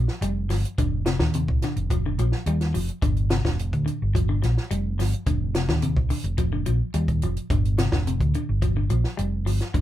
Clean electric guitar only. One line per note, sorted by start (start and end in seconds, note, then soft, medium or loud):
0.00 0.17 F3 medium
0.22 0.45 G3 medium
0.51 0.74 F3 medium
0.79 1.02 D3 medium
1.06 1.18 C3 medium
1.20 1.32 D3 medium
1.35 1.58 C3 medium
1.64 1.86 D3 medium
1.91 2.03 F3 medium
2.06 2.17 D3 medium
2.19 2.42 F3 medium
2.47 2.70 G3 medium
2.74 2.98 F3 medium
3.03 3.26 D3 medium
3.31 3.42 C3 medium
3.45 3.56 D3 medium
3.86 4.09 D3 medium
4.15 4.26 F3 medium
4.29 4.40 D3 medium
4.42 4.66 F3 medium
4.71 4.94 G3 medium
4.99 5.22 F3 medium
5.27 5.50 D3 medium
5.56 5.67 C3 medium
5.70 5.81 D3 medium
5.83 6.06 C3 medium
6.10 6.34 D3 medium
6.38 6.50 F3 medium
6.53 6.64 D3 medium
6.66 6.90 F3 medium
6.94 7.18 G3 medium
7.24 7.46 F3 medium
7.51 7.74 D3 medium
7.79 7.90 C3 medium
7.94 8.05 D3 medium
8.07 8.30 C3 medium
8.35 8.58 D3 medium
8.62 8.74 F3 medium
8.77 8.88 D3 medium
8.90 9.13 F3 medium
9.17 9.41 G3 medium
9.46 9.70 F3 medium
9.74 9.81 D3 medium